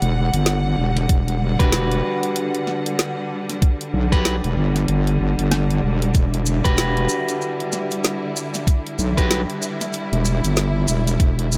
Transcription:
0.00 0.30 E1 loud
0.00 11.58 D3 medium
0.00 11.58 G3 medium
0.00 6.14 F#5 loud
0.00 closed hi-hat soft
0.34 0.76 G1 loud
0.34 closed hi-hat medium
0.46 snare loud
0.46 closed hi-hat medium
0.78 1.07 E1 loud
0.97 closed hi-hat medium
1.09 1.57 E1 medium
1.09 kick loud
1.09 closed hi-hat medium
1.28 closed hi-hat soft
1.59 2.02 E1 loud
1.59 4.08 D4 medium
1.59 4.08 F#4 medium
1.59 4.08 G4 medium
1.59 4.08 B4 medium
1.59 kick loud
1.59 closed hi-hat medium
1.72 snare loud
1.72 closed hi-hat medium
1.92 closed hi-hat soft
2.23 closed hi-hat medium
2.36 closed hi-hat medium
2.55 closed hi-hat soft
2.67 snare medium
2.86 closed hi-hat medium
2.99 snare loud
2.99 closed hi-hat medium
3.49 snare soft
3.49 closed hi-hat medium
3.62 kick loud
3.62 closed hi-hat medium
3.81 closed hi-hat soft
3.94 4.41 B1 loud
4.12 4.35 D4 medium
4.12 4.35 F#4 medium
4.12 4.35 G4 medium
4.12 4.35 B4 medium
4.12 kick loud
4.12 closed hi-hat medium
4.25 snare loud
4.25 closed hi-hat medium
4.44 4.55 E1 loud
4.44 closed hi-hat soft
4.57 4.86 G1 medium
4.76 snare medium
4.76 closed hi-hat medium
4.88 5.18 G1 loud
4.88 closed hi-hat medium
5.07 closed hi-hat soft
5.20 5.36 G1 loud
5.39 5.81 G1 loud
5.39 closed hi-hat medium
5.51 snare loud
5.51 closed hi-hat medium
5.71 closed hi-hat soft
5.83 6.13 E1 loud
6.02 closed hi-hat medium
6.14 6.62 E1 loud
6.14 11.58 E4 loud
6.14 kick loud
6.14 closed hi-hat medium
6.14 maracas soft
6.34 closed hi-hat soft
6.46 maracas loud
6.65 7.07 E1 medium
6.65 9.13 D4 medium
6.65 9.13 F#4 medium
6.65 9.13 G4 medium
6.65 9.13 B4 medium
6.65 kick loud
6.65 closed hi-hat soft
6.65 maracas soft
6.77 snare loud
6.77 closed hi-hat medium
6.77 maracas soft
6.97 closed hi-hat soft
7.09 maracas medium
7.29 closed hi-hat medium
7.29 maracas medium
7.42 maracas soft
7.60 closed hi-hat soft
7.72 snare medium
7.72 maracas medium
7.91 closed hi-hat medium
7.91 maracas soft
8.04 snare loud
8.04 closed hi-hat medium
8.04 maracas soft
8.36 maracas medium
8.54 snare soft
8.54 closed hi-hat medium
8.54 maracas medium
8.67 kick loud
8.67 closed hi-hat medium
8.67 maracas soft
8.87 closed hi-hat soft
8.99 9.46 B1 loud
8.99 maracas medium
9.17 9.41 D4 medium
9.17 9.41 F#4 medium
9.17 9.41 G4 medium
9.17 9.41 B4 loud
9.17 kick loud
9.17 closed hi-hat soft
9.17 maracas medium
9.31 snare loud
9.31 closed hi-hat medium
9.31 maracas soft
9.50 closed hi-hat soft
9.62 maracas medium
9.81 snare medium
9.81 closed hi-hat medium
9.81 maracas soft
9.93 closed hi-hat medium
9.93 maracas soft
10.12 10.41 E1 loud
10.12 closed hi-hat soft
10.25 maracas medium
10.44 10.86 G1 loud
10.44 closed hi-hat medium
10.44 maracas medium
10.56 snare loud
10.56 closed hi-hat medium
10.56 maracas soft
10.88 11.18 E1 loud
10.88 maracas medium
11.07 closed hi-hat medium
11.07 maracas medium
11.20 11.58 E1 loud
11.20 kick loud
11.20 closed hi-hat medium
11.20 maracas soft
11.39 closed hi-hat soft
11.52 maracas medium

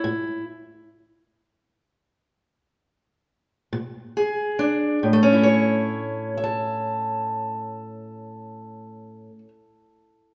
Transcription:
0.00 0.44 E4 medium
0.04 0.68 A2 medium
3.73 4.51 A#2 medium
4.17 4.99 G#4 medium
4.59 4.98 D4 medium
5.03 9.28 A2 medium
5.13 9.38 A3 medium
5.23 9.48 C#4 medium
5.33 6.37 E4 medium
5.43 6.43 C#5 medium
6.37 10.34 E5 medium
6.44 10.34 A5 medium

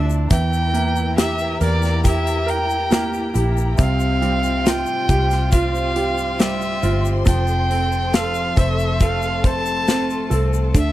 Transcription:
0.00 0.28 D2 medium
0.00 0.27 D3 medium
0.00 0.31 D3 medium
0.00 0.29 A3 soft
0.00 0.40 A3 medium
0.00 0.27 D4 medium
0.00 0.33 D4 medium
0.00 0.40 D4 medium
0.00 0.74 E4 medium
0.00 0.33 F4 medium
0.00 0.27 D5 medium
0.00 0.27 A5 medium
0.10 shaker soft
0.30 1.57 E2 loud
0.30 3.75 E3 medium
0.30 3.79 E3 medium
0.30 3.75 E4 medium
0.30 3.75 A#4 medium
0.30 7.23 G5 medium
0.30 1.14 G5 loud
0.30 3.75 A#5 medium
0.30 kick loud
0.30 closed hi-hat loud
0.30 shaker medium
0.53 shaker soft
0.73 2.44 A#3 medium
0.73 2.04 E4 medium
0.73 closed hi-hat medium
0.96 shaker soft
1.17 2.03 G4 medium
1.17 2.05 G4 medium
1.17 1.58 E5 medium
1.17 snare loud
1.17 closed hi-hat medium
1.17 shaker medium
1.38 shaker soft
1.61 3.31 E2 medium
1.61 2.03 A#3 medium
1.61 2.45 A#4 medium
1.61 2.03 D5 medium
1.61 closed hi-hat medium
1.61 shaker soft
1.82 snare soft
1.82 shaker soft
2.04 2.90 A#3 medium
2.04 2.91 E4 medium
2.04 3.33 G4 medium
2.04 2.92 G4 medium
2.04 2.51 E5 medium
2.04 kick medium
2.04 closed hi-hat medium
2.04 shaker medium
2.27 closed hi-hat soft
2.27 shaker soft
2.46 3.74 A#4 medium
2.46 3.36 G5 loud
2.46 closed hi-hat medium
2.70 shaker soft
2.90 3.76 A#3 medium
2.90 3.87 A#3 medium
2.90 3.34 E4 medium
2.90 4.64 G4 medium
2.90 snare loud
2.90 closed hi-hat medium
2.90 shaker medium
3.13 shaker soft
3.34 3.76 A#1 medium
3.34 3.87 E4 medium
3.34 3.77 G4 medium
3.34 closed hi-hat medium
3.34 shaker soft
3.57 shaker soft
3.78 4.84 C2 loud
3.78 7.22 C3 medium
3.78 7.26 C3 medium
3.78 7.23 F4 medium
3.78 10.71 C5 medium
3.78 4.68 F5 medium
3.78 10.71 C6 medium
3.78 kick loud
3.78 closed hi-hat loud
3.78 shaker medium
4.00 shaker medium
4.22 5.92 G3 medium
4.22 5.52 C4 medium
4.22 closed hi-hat medium
4.43 shaker soft
4.65 5.52 F4 medium
4.65 5.51 F4 medium
4.65 5.52 G5 loud
4.65 snare loud
4.65 closed hi-hat loud
4.65 shaker medium
4.86 shaker soft
5.09 6.79 C2 medium
5.09 5.50 G3 medium
5.09 5.95 G4 medium
5.09 kick medium
5.09 closed hi-hat medium
5.09 shaker soft
5.31 snare soft
5.31 closed hi-hat soft
5.31 shaker soft
5.52 6.38 G3 medium
5.52 6.39 C4 medium
5.52 6.40 F4 medium
5.52 6.81 F4 medium
5.52 6.41 F5 medium
5.52 kick medium
5.52 closed hi-hat medium
5.52 shaker medium
5.75 shaker soft
5.96 7.23 G4 medium
5.96 closed hi-hat medium
6.18 shaker soft
6.39 7.35 G3 medium
6.39 7.24 G3 medium
6.39 6.83 C4 medium
6.39 8.13 F4 medium
6.39 7.05 E5 medium
6.39 snare loud
6.39 closed hi-hat medium
6.39 shaker medium
6.61 shaker soft
6.83 7.24 G1 medium
6.83 7.70 C4 medium
6.83 7.25 F4 medium
6.83 closed hi-hat medium
6.83 shaker soft
7.05 shaker soft
7.26 8.53 F1 loud
7.26 10.74 F2 medium
7.26 10.70 F3 medium
7.26 10.92 A4 medium
7.26 8.16 G5 medium
7.26 10.92 A5 medium
7.26 kick loud
7.26 closed hi-hat loud
7.26 shaker medium
7.47 shaker medium
7.70 9.40 C4 medium
7.70 9.00 C4 medium
7.70 closed hi-hat medium
7.92 shaker soft
8.13 9.01 F4 medium
8.13 8.99 A4 soft
8.13 8.59 F5 medium
8.13 snare loud
8.13 closed hi-hat loud
8.13 shaker medium
8.34 shaker soft
8.57 10.27 F1 medium
8.57 9.00 A3 medium
8.57 9.42 C5 medium
8.57 9.04 E5 medium
8.57 kick medium
8.57 closed hi-hat medium
8.57 shaker soft
8.79 shaker soft
9.00 9.88 A3 medium
9.00 9.88 C4 medium
9.00 9.89 F4 medium
9.00 10.29 A4 medium
9.00 9.48 F5 loud
9.00 kick medium
9.00 closed hi-hat medium
9.00 shaker medium
9.22 shaker soft
9.44 10.71 C5 medium
9.44 10.32 A5 loud
9.44 kick medium
9.44 closed hi-hat medium
9.66 shaker soft
9.87 10.92 A3 medium
9.87 10.72 C4 soft
9.87 10.30 C4 medium
9.87 10.92 F4 medium
9.87 snare medium
9.87 closed hi-hat medium
9.87 shaker medium
10.10 shaker soft
10.30 10.72 C2 medium
10.30 10.83 C4 medium
10.30 10.73 A4 medium
10.30 closed hi-hat medium
10.30 shaker soft
10.53 shaker medium
10.75 10.92 D2 loud
10.75 10.92 D3 medium
10.75 10.92 D5 medium
10.75 10.92 E5 medium
10.75 kick loud
10.75 closed hi-hat loud
10.75 shaker medium

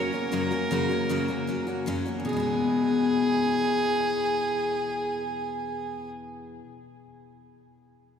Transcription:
0.00 0.13 F#3 medium
0.00 0.14 A#3 medium
0.00 0.12 C#4 medium
0.00 0.11 F#4 medium
0.00 1.83 A#4 medium
0.13 0.31 F#3 soft
0.13 0.32 A#3 soft
0.13 0.32 C#4 soft
0.13 0.32 F#4 soft
0.32 0.51 F#2 medium
0.32 0.52 C#3 medium
0.32 0.52 F#3 medium
0.32 0.51 A#3 medium
0.32 0.51 C#4 medium
0.32 0.50 F#4 medium
0.51 0.71 F#3 soft
0.51 0.71 A#3 soft
0.51 0.71 C#4 medium
0.51 0.71 F#4 medium
0.71 0.90 F#2 medium
0.71 0.90 C#3 medium
0.71 0.91 F#3 medium
0.71 0.90 A#3 medium
0.71 0.90 C#4 medium
0.71 0.88 F#4 medium
0.89 1.09 F#3 soft
0.89 1.09 A#3 soft
0.89 1.10 C#4 medium
0.89 1.09 F#4 medium
1.09 1.29 F#2 medium
1.09 1.29 C#3 medium
1.09 1.29 F#3 medium
1.09 1.29 A#3 medium
1.09 1.28 C#4 medium
1.09 1.27 F#4 medium
1.28 1.46 F#3 soft
1.28 1.47 A#3 soft
1.28 1.48 C#4 medium
1.28 1.48 F#4 medium
1.47 1.67 F#3 medium
1.47 1.68 A#3 medium
1.47 1.67 C#4 medium
1.47 1.65 F#4 medium
1.67 1.86 F#3 soft
1.67 1.86 A#3 soft
1.67 1.87 C#4 soft
1.67 1.86 F#4 medium
1.86 2.06 F#2 medium
1.86 2.06 C#3 medium
1.86 2.06 F#3 medium
1.86 2.06 A#3 medium
1.86 2.05 C#4 loud
1.86 2.04 F#4 medium
2.06 2.27 F#3 medium
2.06 2.26 A#3 soft
2.06 2.26 C#4 medium
2.06 2.25 F#4 medium
2.20 6.58 E2 medium
2.25 6.63 B2 medium
2.25 6.10 G#4 medium
2.29 6.68 E3 medium
2.29 6.71 G#3 medium
2.37 6.75 B3 medium
2.37 6.78 E4 medium

